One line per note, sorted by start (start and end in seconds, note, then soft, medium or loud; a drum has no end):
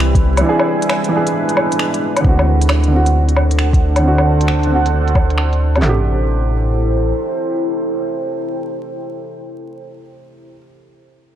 0.00 0.43 C2 medium
0.00 0.41 E3 medium
0.00 0.43 G3 medium
0.00 0.43 C4 medium
0.00 0.47 C4 medium
0.00 2.20 E4 medium
0.00 0.41 B4 loud
0.00 0.47 B4 medium
0.00 finger snap loud
0.15 kick loud
0.15 closed hi-hat soft
0.37 1.07 E3 medium
0.37 closed hi-hat medium
0.37 low woodblock medium
0.45 2.22 G#3 medium
0.45 1.10 D4 medium
0.45 2.22 D4 medium
0.45 2.22 B4 medium
0.49 1.12 G#4 medium
0.60 low woodblock medium
0.82 closed hi-hat medium
0.90 finger snap loud
0.90 low woodblock medium
1.04 closed hi-hat soft
1.09 2.20 E3 medium
1.13 2.23 D4 medium
1.13 2.24 G#4 medium
1.27 closed hi-hat medium
1.49 closed hi-hat soft
1.57 low woodblock medium
1.72 closed hi-hat medium
1.79 finger snap loud
1.94 closed hi-hat soft
2.17 closed hi-hat medium
2.17 low woodblock medium
2.21 5.81 D2 medium
2.21 2.86 D3 medium
2.21 2.90 C4 medium
2.21 5.79 D4 medium
2.21 5.79 A4 medium
2.21 5.79 C5 medium
2.21 5.79 F#5 medium
2.21 kick loud
2.29 2.92 F#4 medium
2.39 low woodblock medium
2.62 closed hi-hat medium
2.69 finger snap loud
2.69 low woodblock medium
2.84 closed hi-hat soft
2.88 3.98 D3 medium
2.92 4.02 C4 medium
2.92 4.04 F#4 medium
3.06 closed hi-hat medium
3.29 closed hi-hat soft
3.36 low woodblock medium
3.51 closed hi-hat medium
3.59 finger snap loud
3.73 kick loud
3.73 closed hi-hat soft
3.96 4.65 D3 medium
3.96 closed hi-hat medium
3.96 low woodblock medium
4.03 4.68 C4 medium
4.07 4.71 F#4 medium
4.18 low woodblock soft
4.41 closed hi-hat medium
4.48 finger snap loud
4.63 5.79 D3 medium
4.63 closed hi-hat soft
4.71 5.81 C4 medium
4.71 5.83 F#4 medium
4.86 closed hi-hat medium
5.08 closed hi-hat soft
5.15 kick loud
5.15 low woodblock medium
5.30 closed hi-hat medium
5.38 finger snap loud
5.53 closed hi-hat soft
5.76 10.52 C3 medium
5.76 closed hi-hat soft
5.76 low woodblock medium
5.81 7.12 A1 medium
5.81 10.58 A3 medium
5.81 10.16 E4 medium
5.81 10.16 A4 medium
5.81 10.16 C5 medium
5.81 10.16 G5 medium
5.81 snare medium
5.81 clap medium
5.81 floor tom medium
5.89 10.64 G4 medium